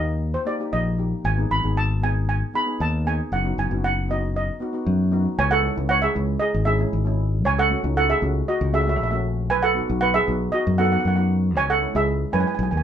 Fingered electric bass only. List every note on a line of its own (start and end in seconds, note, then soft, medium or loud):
0.00 0.35 D#2 medium
0.73 1.12 A#1 medium
1.25 1.44 G#1 loud
1.51 1.61 G#1 medium
1.64 2.42 G#1 medium
2.80 3.19 D#2 medium
3.32 3.51 F#1 medium
3.58 3.68 F#1 medium
3.71 4.49 F#1 medium
4.87 5.26 F#2 medium
5.39 5.68 C#2 loud
5.77 6.06 C#2 medium
6.16 6.35 C#2 medium
6.54 6.83 G#1 medium
6.93 7.45 G#1 medium
7.45 7.74 C#2 medium
7.84 8.13 C#2 medium
8.22 8.41 C#2 medium
8.61 9.00 C#2 loud
9.00 9.51 A#1 medium
9.51 9.80 B1 loud
9.90 10.18 B1 medium
10.28 10.47 B1 medium
10.67 10.95 F#2 medium
11.05 11.56 F#2 medium
11.56 11.85 C#2 medium
11.95 12.24 C#2 medium
12.33 12.43 F#2 medium
12.59 12.69 B1 loud
12.72 12.83 D#2 medium